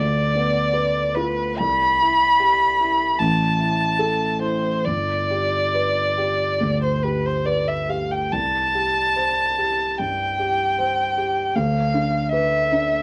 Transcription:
0, 0, Header, 1, 3, 480
1, 0, Start_track
1, 0, Key_signature, 0, "major"
1, 0, Tempo, 757576
1, 464, Tempo, 855920
1, 944, Time_signature, 4, 2, 24, 8
1, 944, Tempo, 800000
1, 2384, Tempo, 868307
1, 4784, Tempo, 834492
1, 5264, Tempo, 808625
1, 6224, Tempo, 775194
1, 7613, End_track
2, 0, Start_track
2, 0, Title_t, "Violin"
2, 0, Program_c, 0, 40
2, 0, Note_on_c, 0, 74, 54
2, 696, Note_on_c, 0, 71, 55
2, 705, Note_off_c, 0, 74, 0
2, 942, Note_on_c, 0, 83, 81
2, 951, Note_off_c, 0, 71, 0
2, 1901, Note_on_c, 0, 81, 55
2, 1910, Note_off_c, 0, 83, 0
2, 2616, Note_off_c, 0, 81, 0
2, 2623, Note_on_c, 0, 72, 49
2, 2858, Note_on_c, 0, 74, 61
2, 2867, Note_off_c, 0, 72, 0
2, 3947, Note_off_c, 0, 74, 0
2, 3952, Note_on_c, 0, 72, 43
2, 4065, Note_on_c, 0, 71, 40
2, 4074, Note_off_c, 0, 72, 0
2, 4193, Note_on_c, 0, 72, 39
2, 4201, Note_off_c, 0, 71, 0
2, 4303, Note_on_c, 0, 74, 40
2, 4311, Note_off_c, 0, 72, 0
2, 4424, Note_on_c, 0, 76, 41
2, 4432, Note_off_c, 0, 74, 0
2, 4544, Note_on_c, 0, 77, 41
2, 4552, Note_off_c, 0, 76, 0
2, 4663, Note_on_c, 0, 79, 46
2, 4671, Note_off_c, 0, 77, 0
2, 4777, Note_on_c, 0, 81, 65
2, 4786, Note_off_c, 0, 79, 0
2, 5749, Note_on_c, 0, 79, 53
2, 5758, Note_off_c, 0, 81, 0
2, 6702, Note_on_c, 0, 77, 55
2, 6711, Note_off_c, 0, 79, 0
2, 7175, Note_off_c, 0, 77, 0
2, 7179, Note_on_c, 0, 76, 58
2, 7613, Note_off_c, 0, 76, 0
2, 7613, End_track
3, 0, Start_track
3, 0, Title_t, "Grand piano"
3, 0, Program_c, 1, 0
3, 0, Control_c, 1, 64, 127
3, 0, Note_on_c, 1, 38, 36
3, 0, Note_on_c, 1, 65, 33
3, 0, Note_on_c, 1, 71, 33
3, 124, Note_off_c, 1, 65, 0
3, 222, Note_on_c, 1, 59, 33
3, 464, Note_off_c, 1, 71, 0
3, 464, Note_on_c, 1, 71, 36
3, 601, Note_off_c, 1, 59, 0
3, 707, Note_on_c, 1, 65, 36
3, 847, Note_off_c, 1, 71, 0
3, 921, Note_off_c, 1, 38, 0
3, 949, Note_off_c, 1, 65, 0
3, 951, Note_on_c, 1, 36, 39
3, 956, Control_c, 1, 64, 0
3, 1051, Control_c, 1, 64, 127
3, 1192, Note_on_c, 1, 64, 35
3, 1427, Note_on_c, 1, 67, 37
3, 1568, Note_off_c, 1, 64, 0
3, 1669, Note_on_c, 1, 64, 37
3, 1810, Note_off_c, 1, 67, 0
3, 1884, Note_off_c, 1, 36, 0
3, 1908, Note_off_c, 1, 64, 0
3, 1909, Note_on_c, 1, 33, 43
3, 1916, Control_c, 1, 64, 0
3, 2020, Control_c, 1, 64, 127
3, 2142, Note_on_c, 1, 64, 37
3, 2385, Note_on_c, 1, 69, 35
3, 2523, Note_off_c, 1, 64, 0
3, 2617, Note_on_c, 1, 64, 32
3, 2765, Note_off_c, 1, 69, 0
3, 2843, Note_off_c, 1, 33, 0
3, 2862, Note_off_c, 1, 64, 0
3, 2867, Note_on_c, 1, 31, 35
3, 2874, Control_c, 1, 64, 0
3, 2974, Control_c, 1, 64, 127
3, 3112, Note_on_c, 1, 67, 30
3, 3353, Note_on_c, 1, 71, 30
3, 3497, Note_off_c, 1, 67, 0
3, 3594, Note_on_c, 1, 67, 32
3, 3736, Note_off_c, 1, 71, 0
3, 3810, Note_off_c, 1, 31, 0
3, 3831, Note_on_c, 1, 38, 28
3, 3974, Note_off_c, 1, 67, 0
3, 4070, Note_on_c, 1, 67, 33
3, 4211, Note_off_c, 1, 38, 0
3, 4301, Note_on_c, 1, 71, 32
3, 4450, Note_off_c, 1, 67, 0
3, 4541, Note_on_c, 1, 67, 29
3, 4689, Note_off_c, 1, 71, 0
3, 4782, Note_on_c, 1, 36, 35
3, 4783, Note_off_c, 1, 67, 0
3, 4796, Control_c, 1, 64, 0
3, 4891, Control_c, 1, 64, 127
3, 5023, Note_on_c, 1, 67, 27
3, 5262, Note_on_c, 1, 72, 30
3, 5411, Note_off_c, 1, 67, 0
3, 5510, Note_on_c, 1, 67, 31
3, 5654, Note_off_c, 1, 72, 0
3, 5727, Note_off_c, 1, 36, 0
3, 5756, Note_on_c, 1, 43, 26
3, 5896, Note_off_c, 1, 67, 0
3, 5992, Note_on_c, 1, 67, 32
3, 6134, Note_off_c, 1, 43, 0
3, 6226, Note_on_c, 1, 72, 31
3, 6372, Note_off_c, 1, 67, 0
3, 6466, Note_on_c, 1, 67, 32
3, 6610, Note_off_c, 1, 72, 0
3, 6702, Note_on_c, 1, 38, 39
3, 6704, Note_off_c, 1, 67, 0
3, 6716, Control_c, 1, 64, 0
3, 6821, Control_c, 1, 64, 127
3, 6941, Note_on_c, 1, 62, 33
3, 7179, Note_on_c, 1, 71, 36
3, 7326, Note_off_c, 1, 62, 0
3, 7424, Note_on_c, 1, 62, 36
3, 7569, Note_off_c, 1, 71, 0
3, 7613, Note_off_c, 1, 38, 0
3, 7613, Note_off_c, 1, 62, 0
3, 7613, End_track
0, 0, End_of_file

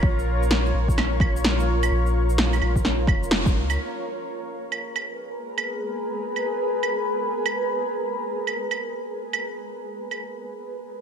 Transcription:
0, 0, Header, 1, 4, 480
1, 0, Start_track
1, 0, Tempo, 468750
1, 36, Time_signature, 4, 2, 24, 8
1, 11277, End_track
2, 0, Start_track
2, 0, Title_t, "Ambient pad"
2, 0, Program_c, 0, 92
2, 0, Note_on_c, 0, 65, 72
2, 0, Note_on_c, 0, 70, 77
2, 0, Note_on_c, 0, 73, 86
2, 3830, Note_off_c, 0, 65, 0
2, 3830, Note_off_c, 0, 73, 0
2, 3835, Note_off_c, 0, 70, 0
2, 3875, Note_on_c, 0, 68, 67
2, 3875, Note_on_c, 0, 70, 74
2, 3876, Note_on_c, 0, 71, 81
2, 10554, Note_off_c, 0, 68, 0
2, 10554, Note_off_c, 0, 70, 0
2, 10555, Note_off_c, 0, 71, 0
2, 11277, End_track
3, 0, Start_track
3, 0, Title_t, "Sub bass"
3, 0, Program_c, 1, 38
3, 25, Note_on_c, 1, 34, 99
3, 739, Note_off_c, 1, 34, 0
3, 753, Note_on_c, 1, 34, 86
3, 1944, Note_off_c, 1, 34, 0
3, 1954, Note_on_c, 1, 34, 105
3, 2664, Note_off_c, 1, 34, 0
3, 2680, Note_on_c, 1, 34, 84
3, 3142, Note_off_c, 1, 34, 0
3, 3148, Note_on_c, 1, 29, 79
3, 3631, Note_on_c, 1, 37, 91
3, 3646, Note_off_c, 1, 29, 0
3, 3859, Note_off_c, 1, 37, 0
3, 11277, End_track
4, 0, Start_track
4, 0, Title_t, "Drums"
4, 28, Note_on_c, 9, 36, 108
4, 130, Note_off_c, 9, 36, 0
4, 195, Note_on_c, 9, 82, 31
4, 298, Note_off_c, 9, 82, 0
4, 439, Note_on_c, 9, 82, 48
4, 519, Note_on_c, 9, 38, 96
4, 541, Note_off_c, 9, 82, 0
4, 621, Note_off_c, 9, 38, 0
4, 675, Note_on_c, 9, 82, 30
4, 777, Note_off_c, 9, 82, 0
4, 904, Note_on_c, 9, 36, 58
4, 918, Note_on_c, 9, 82, 52
4, 1001, Note_on_c, 9, 38, 54
4, 1001, Note_on_c, 9, 75, 51
4, 1006, Note_off_c, 9, 36, 0
4, 1021, Note_off_c, 9, 82, 0
4, 1104, Note_off_c, 9, 38, 0
4, 1104, Note_off_c, 9, 75, 0
4, 1229, Note_on_c, 9, 36, 96
4, 1239, Note_on_c, 9, 75, 53
4, 1332, Note_off_c, 9, 36, 0
4, 1342, Note_off_c, 9, 75, 0
4, 1397, Note_on_c, 9, 82, 50
4, 1479, Note_on_c, 9, 38, 98
4, 1500, Note_off_c, 9, 82, 0
4, 1582, Note_off_c, 9, 38, 0
4, 1634, Note_on_c, 9, 82, 41
4, 1737, Note_off_c, 9, 82, 0
4, 1874, Note_on_c, 9, 75, 67
4, 1874, Note_on_c, 9, 82, 53
4, 1976, Note_off_c, 9, 75, 0
4, 1976, Note_off_c, 9, 82, 0
4, 2115, Note_on_c, 9, 82, 32
4, 2217, Note_off_c, 9, 82, 0
4, 2351, Note_on_c, 9, 82, 55
4, 2440, Note_on_c, 9, 38, 99
4, 2454, Note_off_c, 9, 82, 0
4, 2542, Note_off_c, 9, 38, 0
4, 2592, Note_on_c, 9, 75, 38
4, 2592, Note_on_c, 9, 82, 31
4, 2678, Note_off_c, 9, 75, 0
4, 2678, Note_on_c, 9, 75, 36
4, 2694, Note_off_c, 9, 82, 0
4, 2781, Note_off_c, 9, 75, 0
4, 2822, Note_on_c, 9, 36, 59
4, 2832, Note_on_c, 9, 82, 56
4, 2916, Note_on_c, 9, 38, 57
4, 2925, Note_off_c, 9, 36, 0
4, 2935, Note_off_c, 9, 82, 0
4, 3018, Note_off_c, 9, 38, 0
4, 3148, Note_on_c, 9, 36, 100
4, 3157, Note_on_c, 9, 75, 54
4, 3250, Note_off_c, 9, 36, 0
4, 3260, Note_off_c, 9, 75, 0
4, 3312, Note_on_c, 9, 82, 53
4, 3391, Note_on_c, 9, 38, 103
4, 3414, Note_off_c, 9, 82, 0
4, 3493, Note_off_c, 9, 38, 0
4, 3542, Note_on_c, 9, 36, 101
4, 3549, Note_on_c, 9, 82, 44
4, 3644, Note_off_c, 9, 36, 0
4, 3651, Note_off_c, 9, 82, 0
4, 3787, Note_on_c, 9, 75, 66
4, 3787, Note_on_c, 9, 82, 55
4, 3889, Note_off_c, 9, 75, 0
4, 3889, Note_off_c, 9, 82, 0
4, 4832, Note_on_c, 9, 75, 47
4, 4934, Note_off_c, 9, 75, 0
4, 5076, Note_on_c, 9, 75, 49
4, 5178, Note_off_c, 9, 75, 0
4, 5710, Note_on_c, 9, 75, 57
4, 5813, Note_off_c, 9, 75, 0
4, 6514, Note_on_c, 9, 75, 34
4, 6616, Note_off_c, 9, 75, 0
4, 6994, Note_on_c, 9, 75, 47
4, 7096, Note_off_c, 9, 75, 0
4, 7635, Note_on_c, 9, 75, 61
4, 7738, Note_off_c, 9, 75, 0
4, 8676, Note_on_c, 9, 75, 45
4, 8778, Note_off_c, 9, 75, 0
4, 8920, Note_on_c, 9, 75, 47
4, 9022, Note_off_c, 9, 75, 0
4, 9557, Note_on_c, 9, 75, 56
4, 9660, Note_off_c, 9, 75, 0
4, 10355, Note_on_c, 9, 75, 30
4, 10458, Note_off_c, 9, 75, 0
4, 11277, End_track
0, 0, End_of_file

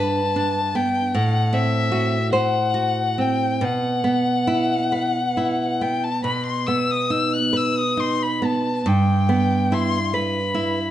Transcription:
0, 0, Header, 1, 3, 480
1, 0, Start_track
1, 0, Tempo, 785340
1, 1181, Tempo, 826446
1, 1661, Tempo, 872093
1, 2140, Time_signature, 12, 3, 24, 8
1, 5021, Tempo, 834492
1, 6197, End_track
2, 0, Start_track
2, 0, Title_t, "Violin"
2, 0, Program_c, 0, 40
2, 0, Note_on_c, 0, 81, 58
2, 463, Note_on_c, 0, 79, 59
2, 472, Note_off_c, 0, 81, 0
2, 700, Note_on_c, 0, 78, 57
2, 709, Note_off_c, 0, 79, 0
2, 938, Note_on_c, 0, 76, 59
2, 947, Note_off_c, 0, 78, 0
2, 1411, Note_off_c, 0, 76, 0
2, 1415, Note_on_c, 0, 78, 56
2, 1908, Note_on_c, 0, 79, 48
2, 1916, Note_off_c, 0, 78, 0
2, 2145, Note_on_c, 0, 78, 53
2, 2153, Note_off_c, 0, 79, 0
2, 3346, Note_on_c, 0, 79, 48
2, 3354, Note_off_c, 0, 78, 0
2, 3466, Note_on_c, 0, 81, 45
2, 3475, Note_off_c, 0, 79, 0
2, 3581, Note_off_c, 0, 81, 0
2, 3585, Note_on_c, 0, 83, 50
2, 3697, Note_off_c, 0, 83, 0
2, 3700, Note_on_c, 0, 84, 41
2, 3813, Note_on_c, 0, 88, 43
2, 3822, Note_off_c, 0, 84, 0
2, 3945, Note_on_c, 0, 87, 45
2, 3953, Note_off_c, 0, 88, 0
2, 4055, Note_on_c, 0, 88, 48
2, 4063, Note_off_c, 0, 87, 0
2, 4183, Note_on_c, 0, 90, 43
2, 4191, Note_off_c, 0, 88, 0
2, 4307, Note_on_c, 0, 88, 49
2, 4315, Note_off_c, 0, 90, 0
2, 4423, Note_on_c, 0, 87, 43
2, 4431, Note_off_c, 0, 88, 0
2, 4545, Note_on_c, 0, 84, 49
2, 4553, Note_off_c, 0, 87, 0
2, 4672, Note_on_c, 0, 83, 45
2, 4680, Note_off_c, 0, 84, 0
2, 4796, Note_on_c, 0, 81, 39
2, 4804, Note_off_c, 0, 83, 0
2, 5033, Note_on_c, 0, 79, 44
2, 5041, Note_off_c, 0, 81, 0
2, 5522, Note_on_c, 0, 84, 52
2, 5530, Note_off_c, 0, 79, 0
2, 5754, Note_on_c, 0, 83, 41
2, 5763, Note_off_c, 0, 84, 0
2, 6197, Note_off_c, 0, 83, 0
2, 6197, End_track
3, 0, Start_track
3, 0, Title_t, "Nylon-string guitar"
3, 0, Program_c, 1, 24
3, 0, Note_on_c, 1, 43, 53
3, 0, Note_on_c, 1, 62, 39
3, 0, Note_on_c, 1, 71, 47
3, 122, Note_off_c, 1, 62, 0
3, 219, Note_on_c, 1, 62, 39
3, 364, Note_off_c, 1, 71, 0
3, 459, Note_on_c, 1, 59, 39
3, 608, Note_off_c, 1, 62, 0
3, 677, Note_off_c, 1, 43, 0
3, 700, Note_on_c, 1, 45, 52
3, 702, Note_off_c, 1, 59, 0
3, 933, Note_on_c, 1, 60, 36
3, 1171, Note_on_c, 1, 66, 38
3, 1317, Note_off_c, 1, 60, 0
3, 1410, Note_on_c, 1, 72, 38
3, 1557, Note_off_c, 1, 66, 0
3, 1650, Note_on_c, 1, 66, 37
3, 1802, Note_off_c, 1, 72, 0
3, 1893, Note_on_c, 1, 60, 36
3, 2040, Note_off_c, 1, 66, 0
3, 2116, Note_off_c, 1, 45, 0
3, 2130, Note_on_c, 1, 47, 46
3, 2136, Note_off_c, 1, 60, 0
3, 2366, Note_on_c, 1, 59, 33
3, 2604, Note_on_c, 1, 64, 34
3, 2755, Note_off_c, 1, 59, 0
3, 2851, Note_on_c, 1, 71, 37
3, 2999, Note_off_c, 1, 64, 0
3, 3098, Note_on_c, 1, 64, 33
3, 3246, Note_off_c, 1, 71, 0
3, 3342, Note_on_c, 1, 59, 30
3, 3489, Note_off_c, 1, 64, 0
3, 3560, Note_off_c, 1, 47, 0
3, 3577, Note_on_c, 1, 47, 41
3, 3584, Note_off_c, 1, 59, 0
3, 3819, Note_on_c, 1, 59, 30
3, 4051, Note_on_c, 1, 63, 34
3, 4195, Note_off_c, 1, 59, 0
3, 4287, Note_on_c, 1, 71, 36
3, 4438, Note_off_c, 1, 63, 0
3, 4530, Note_on_c, 1, 63, 33
3, 4682, Note_off_c, 1, 71, 0
3, 4776, Note_on_c, 1, 59, 33
3, 4922, Note_off_c, 1, 63, 0
3, 4993, Note_off_c, 1, 47, 0
3, 5017, Note_off_c, 1, 59, 0
3, 5018, Note_on_c, 1, 43, 49
3, 5266, Note_on_c, 1, 59, 33
3, 5513, Note_on_c, 1, 64, 33
3, 5658, Note_off_c, 1, 59, 0
3, 5754, Note_on_c, 1, 71, 37
3, 5896, Note_off_c, 1, 64, 0
3, 5988, Note_on_c, 1, 64, 36
3, 6126, Note_off_c, 1, 71, 0
3, 6197, Note_off_c, 1, 43, 0
3, 6197, Note_off_c, 1, 64, 0
3, 6197, End_track
0, 0, End_of_file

